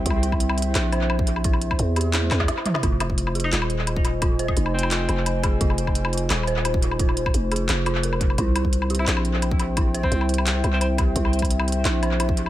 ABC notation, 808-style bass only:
X:1
M:4/4
L:1/8
Q:"Swing 16ths" 1/4=173
K:Fm
V:1 name="808-style bass" clef=bass
C,,4 B,,,4- | B,,,2 =E,,3 E,, z2 | F,,,4 E,,,4- | E,,,2 F,,,3 F,,,3 |
F,,,4 E,,,4- | E,,,2 F,,,2 F,,,4 | C,,4 B,,,4- | B,,,2 C,,3 C,,3 |
C,,4 B,,,4 |]